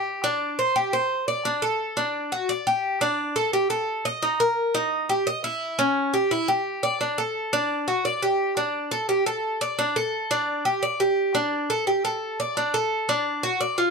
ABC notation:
X:1
M:4/4
L:1/8
Q:1/4=173
K:Dphr
V:1 name="Cuban tres"
G D2 c G c2 d | D A2 D2 ^F d G- | G D2 A G A2 e | E B2 E2 G e =E- |
=E ^C2 G E G2 d | D A2 D2 ^F d G- | G D2 A G A2 d | D A2 D2 G d G- |
G D2 A G A2 d | D A2 D2 ^F d =F |]